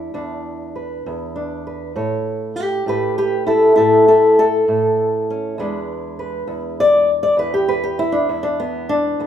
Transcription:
0.00 0.13 E2 medium
0.00 0.13 D4 soft
0.00 0.75 E4 medium
0.14 1.05 E2 medium
0.14 1.34 D4 soft
0.76 1.66 B4 soft
1.06 1.97 E2 medium
1.36 1.93 D4 soft
1.67 1.93 B4 soft
1.96 2.85 A2 medium
1.96 2.56 C#5 soft
2.56 2.87 G4 medium
2.56 2.87 B4 medium
2.86 3.77 A2 medium
2.86 3.17 G4 medium
2.86 3.17 B4 medium
3.18 3.47 G4 medium
3.18 3.46 B4 medium
3.47 3.74 E4 medium
3.47 3.76 A4 medium
3.76 4.67 A2 medium
3.76 4.07 E4 medium
3.76 4.07 A4 medium
4.08 4.38 E4 medium
4.08 4.38 A4 medium
4.39 5.59 A4 loud
4.68 5.59 A2 medium
5.30 5.56 C#4 soft
5.58 6.47 E2 medium
5.58 9.17 G#3 medium
5.58 8.12 D4 medium
5.58 6.19 B4 medium
6.19 6.80 B4 medium
6.47 7.37 E2 medium
6.80 7.10 D5 loud
7.23 7.39 D5 medium
7.37 8.29 E2 medium
7.37 7.54 B4 medium
7.54 7.69 G4 medium
7.68 7.84 B4 medium
7.84 7.99 G4 medium
7.99 8.14 E4 loud
8.12 8.29 D4 medium
8.29 9.19 E2 medium
8.29 8.45 E4 medium
8.43 8.59 D4 medium
8.60 8.90 B3 medium
8.89 9.27 D4 loud
9.20 9.27 E2 medium
9.20 9.27 B3 medium

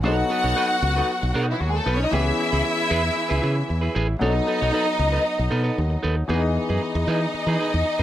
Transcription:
0.03 0.22 B1 loud
0.03 2.08 F#3 medium
0.03 2.09 B3 medium
0.03 0.25 D#4 medium
0.03 2.09 D#4 medium
0.03 1.44 F#4 medium
0.03 0.18 A4 medium
0.03 2.10 A4 medium
0.03 0.17 C#5 medium
0.03 1.44 F#5 loud
0.18 muted clean electric guitar stroke soft
0.30 0.44 D#4 medium
0.30 0.44 A4 medium
0.30 0.43 B4 medium
0.44 0.52 B1 medium
0.44 0.55 D#4 medium
0.44 0.56 A4 medium
0.44 0.57 C#5 medium
0.56 0.76 D#4 medium
0.56 0.70 A4 medium
0.56 0.69 B4 medium
0.70 muted clean electric guitar stroke medium
0.82 1.00 C#2 loud
0.82 muted clean electric guitar stroke soft
0.96 1.12 D#4 soft
0.96 1.11 A4 medium
0.96 1.11 B4 medium
1.22 1.31 B1 loud
1.22 muted clean electric guitar stroke soft
1.34 1.52 B2 medium
1.34 1.55 D#4 medium
1.34 1.48 A4 medium
1.34 1.47 B4 loud
1.48 1.60 E3 medium
1.48 1.60 E4 medium
1.48 muted clean electric guitar stroke soft
1.60 1.78 D#2 medium
1.60 1.69 F#3 medium
1.60 1.69 F#4 medium
1.69 1.78 G#3 medium
1.69 1.78 G#4 medium
1.74 1.86 A3 medium
1.74 muted clean electric guitar stroke medium
1.78 1.87 A4 medium
1.86 2.04 B1 medium
1.86 1.95 B3 medium
1.86 2.06 D#4 medium
1.86 2.00 A4 medium
1.86 1.96 B4 medium
1.86 1.99 B4 medium
1.96 2.04 C#4 medium
1.96 2.04 C#5 medium
2.00 2.13 D#5 medium
2.00 muted clean electric guitar stroke soft
2.05 2.13 D#4 medium
2.11 2.30 C#2 medium
2.11 4.16 E3 medium
2.11 4.17 B3 medium
2.11 4.17 C#4 medium
2.11 2.33 E4 medium
2.11 3.92 E4 medium
2.11 2.20 G4 medium
2.11 2.26 G#4 medium
2.11 2.25 B4 medium
2.11 3.91 E5 loud
2.20 4.21 G#4 medium
2.26 muted clean electric guitar stroke soft
2.39 muted clean electric guitar stroke soft
2.52 2.61 C#2 medium
2.52 2.63 E4 medium
2.52 2.64 G#4 medium
2.52 2.64 B4 medium
2.65 muted clean electric guitar stroke soft
2.79 muted clean electric guitar stroke soft
2.90 3.09 E2 medium
2.90 3.10 E4 medium
2.90 3.03 G#4 medium
2.90 3.02 B4 medium
3.04 muted clean electric guitar stroke soft
3.16 muted clean electric guitar stroke soft
3.29 3.39 C#2 medium
3.29 3.41 E4 medium
3.29 3.42 G#4 medium
3.29 3.42 B4 medium
3.42 3.61 C#3 medium
3.42 3.59 E4 medium
3.42 3.56 G#4 medium
3.42 3.55 B4 medium
3.56 muted clean electric guitar stroke soft
3.68 3.87 E2 medium
3.68 muted clean electric guitar stroke soft
3.81 3.94 E4 soft
3.81 3.94 G#4 medium
3.81 3.95 B4 medium
3.95 4.13 A1 medium
3.95 4.15 E4 medium
3.95 4.08 G#4 medium
3.95 4.07 B4 medium
4.09 muted clean electric guitar stroke soft
4.19 4.39 B1 loud
4.19 6.25 F#3 medium
4.19 6.25 B3 medium
4.19 4.28 D4 medium
4.19 5.99 D#4 medium
4.19 4.41 D#4 medium
4.19 4.34 A4 medium
4.19 6.26 A4 medium
4.19 4.34 C#5 medium
4.19 5.99 D#5 medium
4.27 6.28 D#4 medium
4.35 muted clean electric guitar stroke soft
4.47 4.62 D#4 medium
4.47 4.61 A4 medium
4.47 4.61 B4 medium
4.61 4.70 B1 medium
4.61 4.71 D#4 medium
4.61 4.72 A4 medium
4.61 4.74 C#5 medium
4.73 4.93 D#4 medium
4.73 4.87 A4 medium
4.73 4.86 B4 medium
4.87 muted clean electric guitar stroke soft
4.98 5.17 C#2 loud
4.98 muted clean electric guitar stroke soft
5.12 5.23 D#4 soft
5.12 5.23 A4 medium
5.12 5.24 B4 medium
5.24 muted clean electric guitar stroke soft
5.38 5.48 B1 medium
5.38 muted clean electric guitar stroke soft
5.50 5.69 B2 medium
5.50 5.64 D#4 medium
5.50 5.63 A4 medium
5.50 5.62 B4 medium
5.64 5.80 D#4 medium
5.64 5.79 A4 medium
5.64 5.79 B4 medium
5.78 5.96 D#2 medium
5.90 muted clean electric guitar stroke soft
6.03 6.22 D#2 medium
6.03 6.23 D#4 medium
6.03 6.16 A4 medium
6.03 6.15 B4 medium
6.17 muted clean electric guitar stroke soft
6.28 6.57 E2 medium
6.28 8.03 E3 medium
6.28 8.03 B3 medium
6.28 6.49 D#4 medium
6.28 8.03 D#4 medium
6.28 6.43 G#4 medium
6.28 8.03 G#4 medium
6.28 6.42 B4 medium
6.28 8.03 D#5 medium
6.43 muted clean electric guitar stroke soft
6.56 muted clean electric guitar stroke soft
6.69 6.78 F#2 medium
6.69 6.81 D#4 medium
6.69 6.82 G#4 medium
6.69 6.82 B4 medium
6.82 muted clean electric guitar stroke soft
6.95 7.04 E2 loud
6.95 muted clean electric guitar stroke soft
7.07 7.25 E3 medium
7.07 7.28 D#4 medium
7.07 7.21 G#4 medium
7.07 7.21 B4 medium
7.22 muted clean electric guitar stroke soft
7.34 muted clean electric guitar stroke soft
7.34 muted fingered electric bass stroke soft
7.47 7.55 E3 medium
7.47 7.58 D#4 medium
7.47 7.59 G#4 medium
7.47 7.59 B4 medium
7.59 7.76 D#4 medium
7.59 7.73 G#4 medium
7.59 7.72 B4 medium
7.74 7.82 E2 medium
7.74 muted clean electric guitar stroke soft
7.85 muted clean electric guitar stroke soft
7.99 8.03 F#2 medium
7.99 8.03 G#4 medium
7.99 8.03 B4 medium

